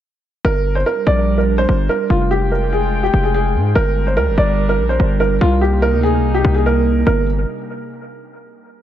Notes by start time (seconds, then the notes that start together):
0.45 G1 G3 D4 A#4
0.75 C5
0.86 A#4
1.07 A#1 D5
1.38 A#4
1.58 C5
1.69 G1
1.89 A#4
2.10 F1 G#3 F4 G5
2.31 G4
2.52 A#4
2.73 G#4
3.03 G4
3.14 F1
3.24 G#4
3.34 G#4
3.55 G#2
3.75 G1 G3 D4 A#4
4.07 C5
4.17 D2 A#4
4.27 G1
4.38 G1 D5
4.69 A#4
4.79 A#1
4.89 C5
5.00 G1
5.20 A#4
5.41 C2 C3 A#3 D#4 F4
5.61 G4
5.82 A#4
5.93 D2
6.03 G#4
6.19 C2
6.34 G4
6.45 C2
6.54 G#4
6.66 A#4
7.07 G1 A#4